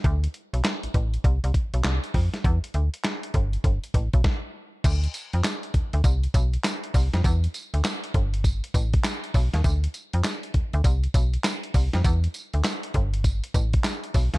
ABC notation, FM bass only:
X:1
M:4/4
L:1/16
Q:"Swing 16ths" 1/4=100
K:Ddor
V:1 name="FM bass" clef=bass
D,,2 z B,,, z A,,, A,,,2 C,, C,, z B,,, C,, z F,, z | E,, z D,, z3 G,,,2 G,,, z A,,, B,,, z4 | D,,2 z F,, z2 D,, D,, C,,2 B,,,2 z2 C,, F,, | E,,2 z D,, z2 G,,,4 A,,,2 z2 B,,, _E,, |
D,,2 z F,, z2 D,, D,, C,,2 B,,,2 z2 C,, F,, | E,,2 z D,, z2 G,,,4 A,,,2 z2 B,,, _E,, |]